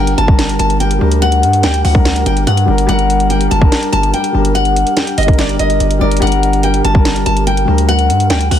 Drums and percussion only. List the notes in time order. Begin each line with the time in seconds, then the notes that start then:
0.07 closed hi-hat
0.18 closed hi-hat
0.28 kick
0.39 snare, closed hi-hat
0.49 closed hi-hat
0.59 closed hi-hat
0.70 closed hi-hat
0.80 closed hi-hat
0.91 closed hi-hat
1.12 closed hi-hat
1.22 closed hi-hat
1.32 closed hi-hat
1.43 closed hi-hat
1.53 closed hi-hat
1.63 snare, closed hi-hat
1.74 closed hi-hat
1.85 open hi-hat
1.95 kick
2.05 snare, closed hi-hat
2.16 closed hi-hat
2.26 closed hi-hat
2.37 closed hi-hat
2.47 closed hi-hat
2.57 closed hi-hat
2.78 closed hi-hat
2.89 closed hi-hat
2.99 closed hi-hat
3.10 closed hi-hat
3.20 closed hi-hat
3.30 closed hi-hat
3.41 closed hi-hat
3.51 closed hi-hat
3.62 kick
3.72 snare, closed hi-hat
3.83 closed hi-hat
3.93 closed hi-hat
4.03 closed hi-hat
4.14 closed hi-hat
4.24 closed hi-hat
4.45 closed hi-hat
4.55 closed hi-hat
4.65 closed hi-hat
4.76 closed hi-hat
4.87 closed hi-hat
4.97 snare, closed hi-hat
5.07 closed hi-hat
5.18 closed hi-hat, open hi-hat
5.23 closed hi-hat
5.28 kick, closed hi-hat
5.33 closed hi-hat
5.39 snare, closed hi-hat
5.49 closed hi-hat
5.59 closed hi-hat
5.70 closed hi-hat
5.80 closed hi-hat
5.91 closed hi-hat
6.11 closed hi-hat
6.17 closed hi-hat
6.22 closed hi-hat
6.27 closed hi-hat
6.32 closed hi-hat
6.43 closed hi-hat
6.53 closed hi-hat
6.63 closed hi-hat
6.74 closed hi-hat
6.85 closed hi-hat
6.95 kick
7.05 snare, closed hi-hat
7.16 closed hi-hat
7.26 closed hi-hat
7.37 closed hi-hat
7.47 closed hi-hat
7.57 closed hi-hat
7.78 closed hi-hat
7.89 closed hi-hat
7.99 closed hi-hat
8.10 closed hi-hat
8.20 closed hi-hat
8.30 snare, closed hi-hat
8.41 closed hi-hat
8.51 open hi-hat